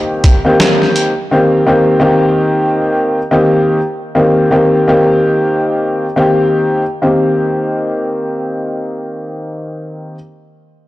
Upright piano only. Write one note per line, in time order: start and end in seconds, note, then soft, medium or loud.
0.00 0.33 D#3 medium
0.00 0.33 A#3 medium
0.00 0.33 C4 medium
0.00 0.34 G4 loud
0.45 1.09 D#3 medium
0.45 1.10 A#3 medium
0.45 1.10 C4 medium
0.45 1.10 G4 loud
1.31 1.64 D#3 medium
1.31 1.65 A#3 medium
1.31 1.65 C4 medium
1.31 1.65 G4 loud
1.66 1.98 D#3 loud
1.66 1.99 A#3 medium
1.66 1.99 C4 medium
1.66 2.00 G4 loud
2.00 3.18 D#3 loud
2.00 3.18 A#3 medium
2.00 3.18 C4 medium
2.00 3.18 G4 loud
3.31 3.78 D#3 loud
3.31 3.78 A#3 medium
3.31 3.78 C4 medium
3.31 3.78 G4 loud
4.15 4.49 D#3 medium
4.15 4.50 A#3 medium
4.15 4.50 C4 medium
4.15 4.50 G4 medium
4.51 4.85 D#3 medium
4.51 4.85 A#3 medium
4.51 4.86 C4 medium
4.51 4.86 G4 loud
4.88 6.04 D#3 medium
4.88 6.05 A#3 medium
4.88 6.05 C4 medium
4.88 6.05 G4 loud
6.16 6.81 D#3 medium
6.16 6.81 A#3 medium
6.16 6.81 C4 medium
6.16 6.82 G4 loud
7.02 10.14 D#3 medium
7.02 10.15 A#3 medium
7.02 10.15 C4 medium
7.02 10.15 G4 medium